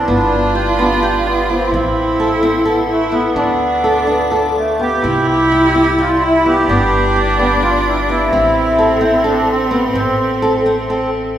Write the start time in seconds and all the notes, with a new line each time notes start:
Already playing: D4
0.07 G1 B3 F4 G4 F5 B5
0.55 G4
0.79 B3 D4
1.03 G4
1.26 B3
1.50 B3 C4
1.71 A1 C4 E4 A4 E5 C6
2.20 A4
2.43 C4
2.65 B3 A4
2.89 A3 E4
3.12 B3
3.35 D2 D4 F4 D6
3.84 A4
4.07 B3 D4
4.31 A4
4.58 A3
4.79 B3 G4
5.02 C2 C4 E4 D5 C6
5.28 G4
5.52 G4
5.75 C4 G4
5.98 F4 G4
6.20 E4
6.24 E4
6.46 B3 G4
6.67 G1 B3 D4 G4 F5 B5
7.16 G4
7.39 B3 G4
7.62 F4 G4
7.88 E4
8.09 B3 E4
8.31 A1 C4 A4 E5 C6
8.79 A4
9.01 C4 E4
9.24 D4 A4
9.49 C4
9.71 B3
9.83 B3
9.94 A1 C4
10.42 A4
10.66 C4
10.88 C4 A4